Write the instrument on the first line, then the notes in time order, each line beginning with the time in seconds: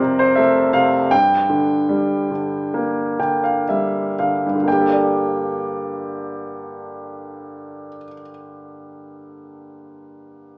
grand piano
Already playing: F2 C3 G3 C4 A#4 C5 D5
0.02 C3
0.19 C5
0.36 A3 E5
0.73 C3 F5
1.11 G2 G5
1.50 D3
1.89 G3
2.31 D3
2.74 A#3
3.19 D3 G5
3.44 F5
3.69 G3 E5
4.19 D3 F5
4.46 G2
4.55 D3
4.63 A#3
4.68 G5
4.72 G4
4.81 A4
4.89 D5